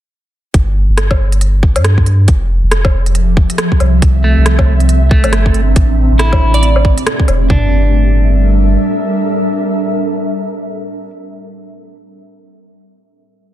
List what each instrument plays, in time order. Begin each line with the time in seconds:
0.54 sub bass G1, kick, closed hi-hat
0.89 sub bass G1
0.98 cross-stick, closed hi-hat
1.11 kick, low woodblock
1.19 sub bass G1
1.32 closed hi-hat
1.41 closed hi-hat
1.63 kick
1.76 sub bass G2, closed hi-hat, low woodblock
1.84 cross-stick, closed hi-hat
1.98 kick
2.06 closed hi-hat
2.28 sub bass F1, ambient pad F3, kick, closed hi-hat
2.49 ambient pad G4 E5
2.63 sub bass F1, ambient pad A4
2.71 ambient pad C4, cross-stick, closed hi-hat
2.85 kick, low woodblock
2.93 sub bass F1
3.06 closed hi-hat
3.15 closed hi-hat
3.37 kick
3.50 closed hi-hat
3.58 cross-stick, closed hi-hat
3.72 kick
3.80 sub bass C2, closed hi-hat, low woodblock
4.02 ambient pad C3, kick, closed hi-hat
4.24 clean electric guitar A3
4.37 sub bass C2
4.46 cross-stick, closed hi-hat
4.59 kick, low woodblock
4.68 sub bass C2
4.80 ambient pad D4, closed hi-hat
4.89 closed hi-hat
5.11 clean electric guitar A3, kick
5.24 sub bass G1, closed hi-hat, low woodblock
5.33 cross-stick, closed hi-hat
5.46 kick
5.54 closed hi-hat
5.76 sub bass A1, ambient pad A2, kick, closed hi-hat
5.91 ambient pad A3
6.11 sub bass A1
6.19 clean electric guitar E4, cross-stick, closed hi-hat
6.32 kick, low woodblock
6.41 sub bass A1
6.46 ambient pad G4
6.54 synth pluck D5, closed hi-hat
6.63 closed hi-hat
6.76 low woodblock
6.85 kick
6.98 closed hi-hat
7.07 cross-stick, closed hi-hat
7.20 kick
7.28 sub bass E1, closed hi-hat, low woodblock
7.50 sub bass G1, ambient pad G3, clean electric guitar D4, kick, floor tom
7.57 ambient pad D4
7.64 ambient pad A4
7.70 ambient pad A#4
7.77 ambient pad E5